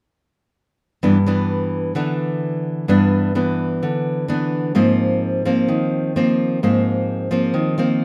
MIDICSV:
0, 0, Header, 1, 2, 480
1, 0, Start_track
1, 0, Tempo, 466200
1, 1055, Time_signature, 4, 2, 24, 8
1, 8286, End_track
2, 0, Start_track
2, 0, Title_t, "Nylon-string guitar"
2, 0, Program_c, 0, 24
2, 1059, Note_on_c, 0, 52, 53
2, 1061, Note_on_c, 0, 43, 63
2, 1065, Note_on_c, 0, 59, 50
2, 1070, Note_on_c, 0, 62, 54
2, 1198, Note_off_c, 0, 52, 0
2, 1202, Note_off_c, 0, 59, 0
2, 1204, Note_off_c, 0, 62, 0
2, 1302, Note_on_c, 0, 52, 51
2, 1310, Note_on_c, 0, 59, 46
2, 1313, Note_on_c, 0, 62, 58
2, 1980, Note_off_c, 0, 52, 0
2, 1985, Note_off_c, 0, 59, 0
2, 1985, Note_off_c, 0, 62, 0
2, 1994, Note_off_c, 0, 43, 0
2, 2007, Note_on_c, 0, 52, 46
2, 2013, Note_on_c, 0, 50, 53
2, 2015, Note_on_c, 0, 59, 44
2, 2022, Note_on_c, 0, 62, 53
2, 2933, Note_off_c, 0, 52, 0
2, 2936, Note_off_c, 0, 59, 0
2, 2941, Note_off_c, 0, 62, 0
2, 2950, Note_off_c, 0, 50, 0
2, 2967, Note_on_c, 0, 43, 60
2, 2971, Note_on_c, 0, 52, 50
2, 2978, Note_on_c, 0, 59, 50
2, 2981, Note_on_c, 0, 62, 61
2, 3415, Note_off_c, 0, 52, 0
2, 3417, Note_off_c, 0, 59, 0
2, 3420, Note_off_c, 0, 62, 0
2, 3451, Note_on_c, 0, 52, 48
2, 3454, Note_on_c, 0, 62, 50
2, 3456, Note_on_c, 0, 59, 47
2, 3907, Note_off_c, 0, 43, 0
2, 3939, Note_on_c, 0, 50, 59
2, 4375, Note_off_c, 0, 52, 0
2, 4376, Note_off_c, 0, 62, 0
2, 4377, Note_off_c, 0, 59, 0
2, 4411, Note_on_c, 0, 52, 50
2, 4420, Note_on_c, 0, 59, 47
2, 4423, Note_on_c, 0, 62, 58
2, 4873, Note_off_c, 0, 50, 0
2, 4874, Note_off_c, 0, 52, 0
2, 4878, Note_off_c, 0, 59, 0
2, 4878, Note_off_c, 0, 62, 0
2, 4888, Note_on_c, 0, 44, 69
2, 4893, Note_on_c, 0, 58, 50
2, 4896, Note_on_c, 0, 53, 55
2, 4903, Note_on_c, 0, 60, 51
2, 5575, Note_off_c, 0, 53, 0
2, 5575, Note_off_c, 0, 58, 0
2, 5580, Note_off_c, 0, 60, 0
2, 5615, Note_on_c, 0, 53, 52
2, 5620, Note_on_c, 0, 58, 49
2, 5628, Note_on_c, 0, 60, 56
2, 5827, Note_off_c, 0, 44, 0
2, 5852, Note_on_c, 0, 51, 59
2, 6296, Note_off_c, 0, 53, 0
2, 6297, Note_off_c, 0, 58, 0
2, 6303, Note_off_c, 0, 60, 0
2, 6342, Note_on_c, 0, 53, 47
2, 6344, Note_on_c, 0, 58, 52
2, 6353, Note_on_c, 0, 60, 59
2, 6779, Note_off_c, 0, 53, 0
2, 6781, Note_off_c, 0, 58, 0
2, 6783, Note_off_c, 0, 60, 0
2, 6789, Note_off_c, 0, 51, 0
2, 6826, Note_on_c, 0, 44, 66
2, 6830, Note_on_c, 0, 53, 48
2, 6831, Note_on_c, 0, 58, 54
2, 6838, Note_on_c, 0, 60, 53
2, 7502, Note_off_c, 0, 53, 0
2, 7503, Note_off_c, 0, 58, 0
2, 7507, Note_off_c, 0, 60, 0
2, 7524, Note_on_c, 0, 53, 52
2, 7529, Note_on_c, 0, 58, 55
2, 7539, Note_on_c, 0, 60, 51
2, 7755, Note_off_c, 0, 44, 0
2, 7761, Note_on_c, 0, 51, 57
2, 7970, Note_off_c, 0, 53, 0
2, 7971, Note_off_c, 0, 58, 0
2, 7977, Note_off_c, 0, 60, 0
2, 8007, Note_on_c, 0, 53, 51
2, 8015, Note_on_c, 0, 58, 49
2, 8021, Note_on_c, 0, 60, 53
2, 8286, Note_off_c, 0, 51, 0
2, 8286, Note_off_c, 0, 53, 0
2, 8286, Note_off_c, 0, 58, 0
2, 8286, Note_off_c, 0, 60, 0
2, 8286, End_track
0, 0, End_of_file